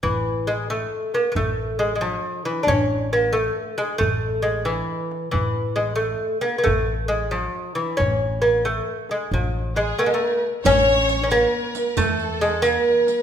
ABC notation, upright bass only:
X:1
M:6/8
L:1/8
Q:3/8=90
K:none
V:1 name="Upright bass" clef=bass
A,,,4 z2 | A,,,4 z2 | A,,,4 z2 | A,,,4 z2 |
A,,,4 z2 | A,,,4 z2 | A,,,4 z2 | A,,,3 z3 |
A,,,4 z2 | E,,4 z2 |]